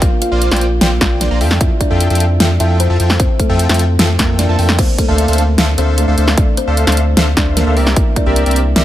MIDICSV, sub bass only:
0, 0, Header, 1, 2, 480
1, 0, Start_track
1, 0, Key_signature, -1, "minor"
1, 0, Tempo, 397351
1, 22, Time_signature, 4, 2, 24, 8
1, 10686, End_track
2, 0, Start_track
2, 0, Title_t, "Sub bass"
2, 0, Program_c, 0, 38
2, 22, Note_on_c, 0, 34, 102
2, 106, Note_off_c, 0, 34, 0
2, 382, Note_on_c, 0, 34, 95
2, 598, Note_off_c, 0, 34, 0
2, 622, Note_on_c, 0, 34, 95
2, 958, Note_off_c, 0, 34, 0
2, 982, Note_on_c, 0, 34, 95
2, 1198, Note_off_c, 0, 34, 0
2, 1222, Note_on_c, 0, 34, 94
2, 1558, Note_off_c, 0, 34, 0
2, 1583, Note_on_c, 0, 34, 95
2, 1702, Note_on_c, 0, 41, 102
2, 1720, Note_off_c, 0, 34, 0
2, 1918, Note_off_c, 0, 41, 0
2, 1942, Note_on_c, 0, 41, 100
2, 2026, Note_off_c, 0, 41, 0
2, 2302, Note_on_c, 0, 41, 99
2, 2518, Note_off_c, 0, 41, 0
2, 2542, Note_on_c, 0, 41, 100
2, 2878, Note_off_c, 0, 41, 0
2, 2901, Note_on_c, 0, 41, 101
2, 3118, Note_off_c, 0, 41, 0
2, 3142, Note_on_c, 0, 41, 100
2, 3478, Note_off_c, 0, 41, 0
2, 3502, Note_on_c, 0, 41, 99
2, 3598, Note_off_c, 0, 41, 0
2, 3622, Note_on_c, 0, 41, 98
2, 3838, Note_off_c, 0, 41, 0
2, 3862, Note_on_c, 0, 41, 100
2, 3946, Note_off_c, 0, 41, 0
2, 4222, Note_on_c, 0, 41, 93
2, 4438, Note_off_c, 0, 41, 0
2, 4462, Note_on_c, 0, 41, 97
2, 4798, Note_off_c, 0, 41, 0
2, 4821, Note_on_c, 0, 41, 97
2, 5038, Note_off_c, 0, 41, 0
2, 5061, Note_on_c, 0, 41, 102
2, 5398, Note_off_c, 0, 41, 0
2, 5422, Note_on_c, 0, 41, 94
2, 5518, Note_off_c, 0, 41, 0
2, 5541, Note_on_c, 0, 41, 101
2, 5781, Note_on_c, 0, 38, 99
2, 5799, Note_off_c, 0, 41, 0
2, 5866, Note_off_c, 0, 38, 0
2, 6142, Note_on_c, 0, 38, 101
2, 6358, Note_off_c, 0, 38, 0
2, 6382, Note_on_c, 0, 38, 100
2, 6718, Note_off_c, 0, 38, 0
2, 6741, Note_on_c, 0, 38, 98
2, 6958, Note_off_c, 0, 38, 0
2, 6981, Note_on_c, 0, 38, 97
2, 7318, Note_off_c, 0, 38, 0
2, 7342, Note_on_c, 0, 38, 102
2, 7438, Note_off_c, 0, 38, 0
2, 7462, Note_on_c, 0, 38, 100
2, 7678, Note_off_c, 0, 38, 0
2, 7701, Note_on_c, 0, 38, 103
2, 7786, Note_off_c, 0, 38, 0
2, 8062, Note_on_c, 0, 38, 93
2, 8278, Note_off_c, 0, 38, 0
2, 8302, Note_on_c, 0, 38, 99
2, 8638, Note_off_c, 0, 38, 0
2, 8661, Note_on_c, 0, 38, 95
2, 8877, Note_off_c, 0, 38, 0
2, 8902, Note_on_c, 0, 38, 95
2, 9238, Note_off_c, 0, 38, 0
2, 9262, Note_on_c, 0, 38, 97
2, 9382, Note_on_c, 0, 36, 100
2, 9400, Note_off_c, 0, 38, 0
2, 9598, Note_off_c, 0, 36, 0
2, 9622, Note_on_c, 0, 36, 99
2, 9706, Note_off_c, 0, 36, 0
2, 9982, Note_on_c, 0, 36, 98
2, 10198, Note_off_c, 0, 36, 0
2, 10222, Note_on_c, 0, 36, 97
2, 10558, Note_off_c, 0, 36, 0
2, 10581, Note_on_c, 0, 36, 99
2, 10686, Note_off_c, 0, 36, 0
2, 10686, End_track
0, 0, End_of_file